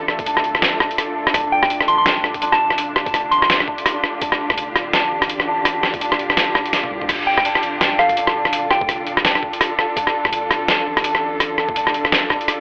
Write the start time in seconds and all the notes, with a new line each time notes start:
Already playing: A1 D3 A3 D4 F4 A4
0.08 cross-stick
0.19 F1, kick, closed hi-hat
0.26 D4, closed hi-hat
0.37 cross-stick
0.44 D1, closed hi-hat
0.55 cross-stick
0.62 snare, closed hi-hat
0.80 D4, kick, cross-stick
0.91 closed hi-hat
0.98 D5, cross-stick, closed hi-hat
1.27 cross-stick
1.34 D1 D4, kick, cross-stick, closed hi-hat
1.52 G5
1.63 G5, kick, cross-stick
1.70 closed hi-hat
1.81 cross-stick
1.88 D1 D4 C6, closed hi-hat
1.98 C6
2.06 D#1, cross-stick, snare, closed hi-hat
2.24 cross-stick
2.34 kick, closed hi-hat
2.42 D4, closed hi-hat
2.52 A5, cross-stick
2.70 cross-stick
2.78 closed hi-hat
2.96 cross-stick
3.06 F1, kick, closed hi-hat
3.14 D4, cross-stick, closed hi-hat
3.20 G4
3.31 D1 C6, closed hi-hat
3.42 C6, cross-stick
3.50 snare, closed hi-hat
3.60 cross-stick
3.67 D4, kick
3.78 closed hi-hat
3.86 cross-stick, closed hi-hat
4.04 cross-stick
4.21 D4, kick, closed hi-hat
4.32 cross-stick
4.50 F1, kick, cross-stick
4.58 closed hi-hat
4.75 D1, cross-stick, closed hi-hat
4.93 D4, cross-stick, snare, closed hi-hat
5.12 A1
5.22 kick, cross-stick, closed hi-hat
5.29 closed hi-hat
5.40 cross-stick
5.48 D4
5.65 cross-stick, closed hi-hat
5.83 cross-stick, snare
5.94 F1, kick, closed hi-hat
6.01 D4, closed hi-hat
6.12 cross-stick
6.19 D1, closed hi-hat
6.30 cross-stick
6.37 snare, closed hi-hat
6.55 kick, cross-stick
6.66 closed hi-hat
6.73 D5, snare, closed hi-hat
6.84 high tom
6.91 C2
7.02 mid tom
7.09 D1, kick, cross-stick, closed hi-hat, crash
7.27 G5
7.37 G5, kick, cross-stick
7.45 D4, closed hi-hat
7.55 cross-stick
7.63 D1, closed hi-hat
7.81 D#1, cross-stick, snare, closed hi-hat
7.99 A4 F5, cross-stick
8.09 kick, closed hi-hat
8.17 D4, closed hi-hat
8.27 cross-stick
8.45 A4, cross-stick
8.53 closed hi-hat
8.71 G5, cross-stick
8.81 F1, kick
8.89 cross-stick, closed hi-hat
9.07 D1, closed hi-hat
9.17 cross-stick
9.25 D4, snare, closed hi-hat
9.35 cross-stick
9.43 kick
9.53 closed hi-hat
9.61 cross-stick, closed hi-hat
9.79 A4, cross-stick
9.96 D4, kick, closed hi-hat
10.07 cross-stick
10.25 F1, kick, cross-stick
10.33 closed hi-hat
10.50 D1, cross-stick, closed hi-hat
10.68 cross-stick, snare, closed hi-hat
10.87 A1
10.97 kick, cross-stick, closed hi-hat
11.04 D4, closed hi-hat
11.15 cross-stick
11.40 cross-stick, closed hi-hat
11.58 A4, cross-stick
11.69 F1, kick
11.76 D4, closed hi-hat
11.87 cross-stick
11.94 D1, closed hi-hat
12.05 cross-stick
12.12 snare, closed hi-hat
12.30 D4, kick, cross-stick
12.41 closed hi-hat
12.48 D5, cross-stick, closed hi-hat